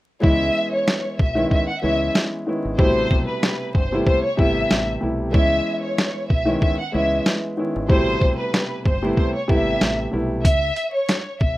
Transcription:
0.21 fingered electric bass C#2, grand piano E3 G#3 B3 C#4 E4, violin section E5, kick
0.73 violin section C#5
0.88 snare
1.19 fingered electric bass B1, violin section E5, kick
1.35 grand piano D#3 G#3 B3 C#4 E4
1.51 violin section E5, kick
1.69 violin section F#5
1.82 fingered electric bass C#2, grand piano E3 G#3 B3 C#4 E4, violin section E5
2.15 snare
2.46 grand piano D#3 G#3 B3 C#4 E4
2.65 fingered electric bass G#1
2.78 fingered electric bass A1, grand piano B2 C3 G3 A3 E4, violin section C5, kick
3.11 fingered electric bass B1, kick
3.27 violin section B4
3.43 snare
3.75 fingered electric bass G1, violin section C5, kick
3.92 grand piano C3 G3 A3 B3 E4
4.06 violin section C5, kick
4.24 violin section C#5
4.37 fingered electric bass G#1, grand piano C3 G3 A3 B3 E4, violin section E5, kick
4.71 fingered electric bass A1, snare
5.01 fingered electric bass B1, grand piano C3 G3 A3 B3 E4
5.31 fingered electric bass C#2, grand piano E3 G#3 B3 C#4 E4, violin section E5, kick
5.83 violin section C#5
5.98 snare
6.30 fingered electric bass B1, violin section E5, kick
6.46 grand piano D#3 G#3 B3 C#4 E4
6.61 violin section E5, kick
6.79 violin section F#5
6.92 fingered electric bass C#2, grand piano E3 G#3 B3 C#4 E4, violin section E5
7.26 snare
7.57 grand piano D#3 G#3 B3 C#4 E4
7.76 fingered electric bass G#1
7.88 fingered electric bass A1, grand piano B2 C3 G3 A3 E4, violin section C5, kick
8.21 fingered electric bass B1, kick
8.39 violin section B4
8.54 snare
8.85 fingered electric bass G1, violin section C5, kick
9.03 grand piano C3 G3 A3 B3 E4
9.16 violin section C5, kick
9.35 violin section C#5
9.48 fingered electric bass G#1, grand piano C3 G3 A3 B3 E4, violin section E5, kick
9.81 fingered electric bass A1, snare
10.11 fingered electric bass B1, grand piano C3 G3 A3 B3 E4
10.44 fingered electric bass C#2, violin section E5, kick, closed hi-hat
10.76 closed hi-hat
10.94 violin section C#5
11.09 snare, closed hi-hat
11.40 fingered electric bass B1, violin section E5, kick

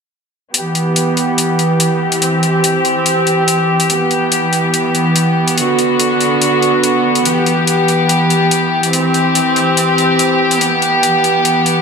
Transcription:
0.54 string section E3 B3 G4, closed hi-hat
0.75 closed hi-hat
0.96 closed hi-hat
1.17 closed hi-hat
1.38 closed hi-hat
1.59 closed hi-hat
1.80 closed hi-hat
2.12 closed hi-hat
2.22 string section C4, closed hi-hat
2.43 closed hi-hat
2.64 closed hi-hat
2.85 closed hi-hat
3.06 closed hi-hat
3.27 closed hi-hat
3.48 closed hi-hat
3.80 closed hi-hat
3.90 string section E3 B3, closed hi-hat
4.11 closed hi-hat
4.32 closed hi-hat
4.53 closed hi-hat
4.74 closed hi-hat
4.95 closed hi-hat
5.16 closed hi-hat
5.48 closed hi-hat
5.58 string section D3 F#4, closed hi-hat
5.79 closed hi-hat
6.00 closed hi-hat
6.21 closed hi-hat
6.42 closed hi-hat
6.62 closed hi-hat
6.83 closed hi-hat
7.15 closed hi-hat
7.25 string section E3 G4, closed hi-hat
7.46 closed hi-hat
7.67 closed hi-hat
7.88 closed hi-hat
8.09 closed hi-hat
8.30 closed hi-hat
8.51 closed hi-hat
8.83 closed hi-hat
8.93 string section C4 G4, closed hi-hat
9.14 closed hi-hat
9.35 closed hi-hat
9.56 closed hi-hat
9.77 closed hi-hat
9.98 closed hi-hat
10.19 closed hi-hat
10.51 closed hi-hat
10.61 string section B3, closed hi-hat
10.82 closed hi-hat
11.03 closed hi-hat
11.24 closed hi-hat
11.45 closed hi-hat
11.66 closed hi-hat

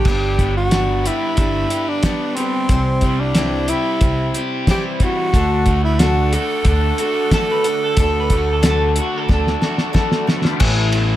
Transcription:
Already playing: tenor saxophone G4
0.05 upright bass G1, overdriven electric guitar G2, steel-string acoustic guitar G3 D4, kick, crash
0.09 steel-string acoustic guitar G4 B4
0.38 overdriven electric guitar B3, steel-string acoustic guitar D4 G4 B4, kick, closed hi-hat
0.57 tenor saxophone F#4
0.71 steel-string acoustic guitar G3 D4 B4, snare, closed hi-hat
1.06 steel-string acoustic guitar D4 G4 B4, tenor saxophone E4, closed hi-hat
1.37 upright bass G1, steel-string acoustic guitar G3 D4 G4 B4, kick, closed hi-hat
1.70 overdriven electric guitar G4, steel-string acoustic guitar B4, closed hi-hat
1.74 steel-string acoustic guitar D4 G4
1.89 tenor saxophone D4
2.03 steel-string acoustic guitar G3 D4 G4 B4, overdriven electric guitar B3, kick, snare, closed hi-hat
2.36 overdriven electric guitar G3, tenor saxophone C4, steel-string acoustic guitar B4, closed hi-hat
2.40 steel-string acoustic guitar D4 G4
2.69 upright bass C2, steel-string acoustic guitar C3 E3 G3 C4 E4 C5, kick, closed hi-hat
3.01 overdriven electric guitar G3, steel-string acoustic guitar C5, kick, closed hi-hat
3.05 steel-string acoustic guitar G3 C4 E4
3.20 tenor saxophone D4
3.35 steel-string acoustic guitar C3 E3 G3 C4 E4 C5, snare, closed hi-hat
3.68 tenor saxophone E4, overdriven electric guitar G4, steel-string acoustic guitar C5, closed hi-hat
3.72 steel-string acoustic guitar G3 C4 E4
4.01 upright bass C2, steel-string acoustic guitar G3 C4, kick, closed hi-hat
4.05 steel-string acoustic guitar E4 C5
4.34 steel-string acoustic guitar G3 C4 E4 C5, overdriven electric guitar G4, closed hi-hat
4.67 steel-string acoustic guitar C3 E3 G3 C4 E4 C5, tenor saxophone G4, kick, snare, closed hi-hat
5.00 overdriven electric guitar E3, steel-string acoustic guitar G3 C4 E4 C5, kick, closed hi-hat
5.04 tenor saxophone F#4
5.32 upright bass D2, steel-string acoustic guitar D3 A3 D4 F#4 A4, tonewheel organ A3 D4 F#4, kick, closed hi-hat
5.66 overdriven electric guitar A3, steel-string acoustic guitar D4 F#4 A4, kick, closed hi-hat
5.84 tenor saxophone E4
5.99 steel-string acoustic guitar D3 A3 D4 F#4 A4, tenor saxophone F#4, snare, closed hi-hat
6.33 steel-string acoustic guitar D4 F#4 A4, tenor saxophone A4, closed hi-hat
6.65 upright bass D2, steel-string acoustic guitar A3 D4 F#4 A4, kick, closed hi-hat
6.98 steel-string acoustic guitar F#4 A4, closed hi-hat
7.02 steel-string acoustic guitar D4
7.31 steel-string acoustic guitar D3 A3 D4 F#4 A4, clean electric guitar A4, kick, snare, closed hi-hat
7.51 clean electric guitar B4
7.64 overdriven electric guitar D3, steel-string acoustic guitar D4 F#4 A4, clean electric guitar F#4, closed hi-hat
7.84 clean electric guitar A4
7.95 upright bass D2, steel-string acoustic guitar D3, tonewheel organ F#3 A3 D4, kick, closed hi-hat
7.99 steel-string acoustic guitar A3 D4 F#4 A4, clean electric guitar A4
8.20 clean electric guitar B4
8.30 overdriven electric guitar A3, steel-string acoustic guitar D4 F#4 A4, kick, closed hi-hat
8.38 clean electric guitar F#4
8.53 clean electric guitar A4
8.62 steel-string acoustic guitar D3 A3 D4 F#4 A4, snare, closed hi-hat
8.70 clean electric guitar A4
8.88 clean electric guitar B4
8.96 steel-string acoustic guitar D4 F#4 A4, closed hi-hat
9.02 clean electric guitar F#4
9.18 clean electric guitar A4
9.28 upright bass D2, steel-string acoustic guitar A3 D4 F#4 A4, kick, snare
9.34 clean electric guitar A4
9.47 snare
9.61 steel-string acoustic guitar D4 F#4 A4, snare
9.78 snare
9.93 steel-string acoustic guitar D3 A3 D4 F#4 A4, kick, snare
10.12 snare
10.27 overdriven electric guitar D3, tonewheel organ A3 B3, steel-string acoustic guitar D4 F#4 A4, snare
10.35 tonewheel organ C4 D4
10.40 tonewheel organ E4
10.44 tonewheel organ F4 G4 A4, snare
10.51 tonewheel organ B4 C5
10.57 steel-string acoustic guitar A2 E3 B3 C#4 E4 A4, tonewheel organ B3 C#4 A4 D5, kick, crash
10.61 upright bass A1, overdriven electric guitar A3
10.92 steel-string acoustic guitar B3 C#4 E4 A4, ride

